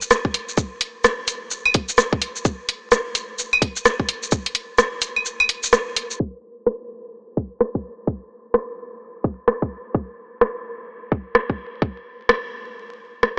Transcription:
0.02 shaker
0.11 cross-stick, shaker
0.25 kick
0.34 open hi-hat
0.49 shaker
0.57 kick, shaker
0.81 open hi-hat
1.04 cross-stick, shaker
1.28 open hi-hat, shaker
1.51 shaker
1.66 claves
1.74 kick, open hi-hat
1.89 shaker
1.98 cross-stick, shaker
2.13 kick
2.22 open hi-hat
2.36 shaker
2.45 kick, shaker
2.69 open hi-hat
2.92 cross-stick, shaker
3.15 open hi-hat, shaker
3.39 shaker
3.53 claves
3.62 kick, open hi-hat
3.76 shaker
3.85 cross-stick, shaker
4.00 kick
4.09 open hi-hat
4.23 shaker
4.32 kick, shaker
4.46 open hi-hat
4.55 open hi-hat
4.78 cross-stick, shaker
5.02 open hi-hat, shaker
5.16 claves
5.26 shaker
5.40 claves
5.49 open hi-hat
5.63 shaker
5.73 cross-stick, shaker
5.96 open hi-hat
6.11 shaker
6.20 kick
6.66 cross-stick
7.37 kick
7.60 cross-stick
7.75 kick
8.07 kick
8.54 cross-stick
9.24 kick
9.48 cross-stick
9.62 kick
9.95 kick
10.41 cross-stick
11.12 kick
11.35 cross-stick
11.50 kick
11.82 kick
12.29 cross-stick
13.23 cross-stick

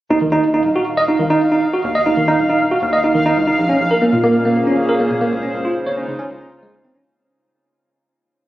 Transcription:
0.10 D#2 D#4 F5
0.21 D#3
0.32 D#2 D#4
0.54 D#4
0.65 D#1
0.76 F#4
0.97 D#5
1.08 D#4
1.19 C#2 D#3
1.30 D#4
1.52 D#4
1.73 F#4
1.84 D#2
1.95 D#5
2.06 D#2 D#4
2.17 D#3
2.28 D#4
2.39 D#1
2.50 D#4
2.71 F#4
2.82 D#2
2.93 D#5
3.04 D#4
3.15 D#3
3.26 D#4
3.37 C#2
3.47 D#4
3.58 A#1 A#2
3.69 C#4
3.80 A#1
3.88 A#3 A#4
4.02 A#3 C#4
4.13 A#2
4.24 A#3
4.36 G#4 C5
4.45 A#3
4.67 G#1 C#4
4.89 A#4
5.00 A#3
5.10 A#2
5.21 A#3
5.32 C#2 C#3
5.43 C#4
5.50 C#2 G#3
5.59 D#4
5.65 F4
5.73 F4
5.86 G#1 C#5
5.97 C#4
6.08 C#3
6.19 C#4
6.30 C#2
6.41 C#4
6.63 G#3
6.84 G#1 C4
6.95 C#4

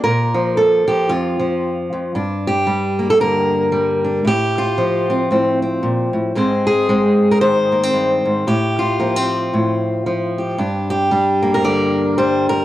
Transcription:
0.04 A#2 A#4
0.34 F3
0.57 A4
0.87 F3 G4
1.09 F2 F4
1.39 F3
1.93 F2
2.15 G2 D4
2.47 G4
2.67 G3
2.99 A#3
3.10 A4
3.20 D3 A#4
3.72 G3
4.04 D4
4.25 A2 G4
4.58 F4
4.78 F3
5.10 C4
5.31 A2 C4
5.62 C4
5.83 A#2
6.13 A2
6.35 G#2 G#3 C4 C5
6.67 G#4
6.89 G#3 C4
7.31 A#4
7.41 D#3 C5
7.72 A#3
7.83 C4
7.93 G2
8.25 G#2
8.47 A2 G4
8.79 F4
9.00 F3 A#3
9.16 C4
9.53 A2
10.06 F3
10.38 G4
10.58 G2 D4
10.90 G4
11.11 G3 D4
11.42 A#3
11.54 A#4
11.64 D3 D5
12.18 G3 C5
12.49 A#4

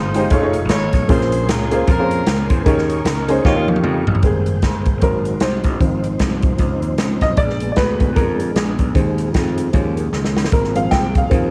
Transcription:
Already playing: G1 G#2 G#3 C4 D#4 F4 C5 F5 G5 D#6
0.14 G#3 D#4 F4 G4 C5, closed hi-hat
0.30 F1 A3 D#4 F4 G#4 C#5 D#5 F5 C#6, kick, closed hi-hat
0.42 A3 D#4 F4 G#4 C#5
0.53 closed hi-hat
0.69 G#1 G#4 A4 C#5, snare, closed hi-hat
0.93 B1, kick, snare, closed hi-hat
1.09 A#1 A#2 A#3 C#4 F4 G#4 A#4 C5 G#5 C6, kick, closed hi-hat
1.21 snare
1.32 closed hi-hat
1.48 C#2 C#4 F4 A#4, snare, closed hi-hat
1.71 A#3 C#4 F4 G#4 C5, closed hi-hat
1.87 F2 C#4 F4 A#4, kick, closed hi-hat
1.99 A#3 C#4 F4 G#4 C5
2.11 closed hi-hat
2.27 C#2, snare, closed hi-hat
2.50 E2 C5, kick, closed hi-hat
2.66 D#2 D#3 A#3 C#4 D#4 G#4 A#4 C#5 D#5 C#6, kick, closed hi-hat
2.78 snare
2.90 closed hi-hat
3.05 C#2, snare, closed hi-hat
3.28 A#3 C#4 D#4 G#4 C5, closed hi-hat
3.44 D#2 D#3 A#3 C#4 D#4 F4 G4 C#5 F5, kick, snare
3.56 A#3 D#4 F4 G4 C#5
3.68 A#3 C#4 G4, high tom
3.76 high tom
3.84 F2, mid tom
4.07 A1, floor tom
4.15 floor tom
4.23 G#1 G3 A#3 C4 G#4 C5 G5, kick, closed hi-hat
4.46 closed hi-hat
4.62 G1, kick, snare, closed hi-hat
4.85 kick, closed hi-hat
5.01 G#1 F#3 G#3 A#3 C4 D#4 F#4 A#4 C5, kick, closed hi-hat
5.25 closed hi-hat
5.40 C2 C5, snare, closed hi-hat
5.64 A1, kick, snare, closed hi-hat
5.80 G#1 D#3 F3 C4 C5, kick, closed hi-hat
6.04 closed hi-hat
6.19 C2, kick, snare, closed hi-hat
6.42 kick, closed hi-hat
6.58 C#2, kick, closed hi-hat
6.82 D#2, closed hi-hat
6.98 C#2, snare, closed hi-hat
7.21 B1 D#5, kick, snare, closed hi-hat
7.37 A#1 G#3 B3 D4 G#4 D5, kick, closed hi-hat
7.50 snare
7.60 closed hi-hat
7.72 D5
7.76 D2 B4, kick, snare, closed hi-hat
7.99 D3 G#3 B3, kick, closed hi-hat
8.16 F2 A#4, kick, closed hi-hat
8.40 closed hi-hat
8.55 A#1 G#4, snare, closed hi-hat
8.79 B1, kick, closed hi-hat
8.94 D#2 D#3 G#3 C4 G#4, kick, closed hi-hat
9.18 closed hi-hat
9.34 F2, kick, snare, closed hi-hat
9.58 closed hi-hat
9.73 D#2 D#3 F3 G#3 A#3 C#4, kick, closed hi-hat
9.97 closed hi-hat
10.13 C#2, snare
10.25 snare
10.37 snare
10.45 snare
10.52 G#1 F3 A#3 C4 F4 G#4 A#4, kick, closed hi-hat
10.64 snare
10.75 F3 A#3 C4 F5, closed hi-hat
10.91 C2 G5, kick, snare, closed hi-hat
11.15 F5, kick, closed hi-hat
11.30 D#2 F3 A#3 C4, kick, closed hi-hat

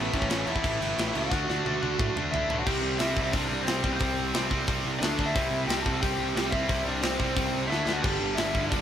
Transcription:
Already playing: A2 E3 A3
0.00 B3 B4
0.13 A1 A2 E3 A3 C#4, kick, crash
0.18 C#5
0.22 kick
0.30 A1 A2 E3 A3, snare, crash
0.46 E2 A2 E3 A3 E4, crash
0.51 E5
0.56 kick
0.63 A1 A2 E3 A3, kick, crash
0.81 G1 A2 E3 A3, crash
0.97 A1 A2 E3 A3, snare, crash
1.14 C#2 A2 E3 A3 F#4 F#5, crash
1.31 D2 D3 A3 D4, kick, snare
1.48 D2 D3 A3 D4, snare
1.66 D2 D3 A3 D4, high tom
1.82 D2 D3 A3 D4, high tom
1.99 A2 D3 A3 D4, kick, mid tom
2.16 D2 D3 A3 D4, mid tom
2.32 D2 D3 A3 D4 E4 E5, floor tom
2.50 B1 D3 A3 D4, floor tom
2.59 F#4 F#5
2.66 C2 C3 G3 C4 G4 G5, kick, crash
2.82 C2
2.99 C2 C3 G3 C4 E4 E5, snare, open hi-hat
3.17 C2 C3 G3 C4, kick
3.22 E4 E5
3.31 C2 C3 G3 C4 D4 D5, kick, open hi-hat
3.51 C2
3.63 C4 C5
3.67 C2 C3 G3 C4, snare, open hi-hat
3.83 C2 C3 G3 C4, kick
3.92 B4 C5
3.99 C2 C3 G3 C4, kick, open hi-hat
4.19 C2
4.34 C2 C3 G3 C4, snare, open hi-hat
4.50 C2 C3 G3 C4, kick
4.67 C2 C3 G3 C4, kick, open hi-hat
4.85 C2
4.99 D2 D3 A3 D4 D5, snare, open hi-hat
5.19 D2 D3 A3 D4, kick
5.26 E4 E5
5.35 C2 C3 G3 C4, kick, open hi-hat
5.51 C2
5.68 C2 C3 G3 C4 G4 G5, snare, open hi-hat
5.83 C2 C3 G3 C4 A4 A5, kick
6.00 C2 C3 G3 C4 G4 G5, kick, open hi-hat
6.18 C2
6.35 C2 C3 G3 C4, snare, open hi-hat
6.51 C2 C3 G3 C4 E4 E5, kick
6.68 C2 C3 G3 C4, kick, open hi-hat
6.84 C2 D4 D5
7.02 C2 C3 G3 C4 C5, snare, open hi-hat
7.19 C2 C3 G3 C4, kick
7.36 C2 C3 G3 C4, kick, open hi-hat
7.53 C2
7.67 D2 D3 A3 D4 E4 E5
7.72 snare
7.86 D2 D3 A3 D4, snare
7.93 F#4 F#5
8.02 G1 G2 D3 G3 G4 G5, kick, crash
8.20 G1
8.35 G1 G2 D3 G3 E4 E5, snare, open hi-hat
8.54 G1 G2 D3 G3, kick
8.60 E4 E5
8.70 G1 G2 D3 G3 D4 D5, kick, open hi-hat

